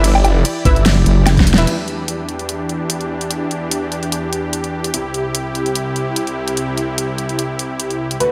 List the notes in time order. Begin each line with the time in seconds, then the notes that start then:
Already playing: G1 E3 E4 G4 D5
0.04 closed hi-hat, crash
0.15 low woodblock
0.25 F#1, closed hi-hat, low woodblock
0.45 closed hi-hat, crash
0.65 G1 E4 B4 E5, kick, closed hi-hat
0.76 closed hi-hat
0.86 snare, closed hi-hat, crash
1.06 F#1, closed hi-hat
1.27 snare, closed hi-hat, crash, low woodblock
1.37 kick, snare, closed hi-hat
1.47 E1, open hi-hat
1.54 snare
1.58 E4 B4 E5, closed hi-hat
1.67 E2 E3 D4 G4, closed hi-hat, crash
1.88 closed hi-hat
2.08 closed hi-hat
2.29 closed hi-hat
2.39 closed hi-hat
2.49 closed hi-hat
2.69 closed hi-hat
2.90 closed hi-hat
3.01 closed hi-hat
3.21 closed hi-hat
3.31 closed hi-hat
3.51 closed hi-hat
3.71 closed hi-hat
3.92 closed hi-hat
4.03 closed hi-hat
4.12 closed hi-hat
4.33 closed hi-hat
4.53 closed hi-hat
4.64 closed hi-hat
4.84 closed hi-hat
4.94 C2 C3 E4, closed hi-hat
5.14 closed hi-hat
5.35 closed hi-hat
5.55 closed hi-hat
5.66 closed hi-hat
5.75 closed hi-hat
5.96 closed hi-hat
6.16 closed hi-hat
6.27 closed hi-hat
6.48 closed hi-hat
6.57 closed hi-hat
6.78 closed hi-hat
6.98 closed hi-hat
7.18 closed hi-hat
7.29 closed hi-hat
7.39 closed hi-hat
7.59 closed hi-hat
7.80 closed hi-hat
7.90 closed hi-hat
8.11 closed hi-hat
8.20 D2 D3 A3 F#4 B4, closed hi-hat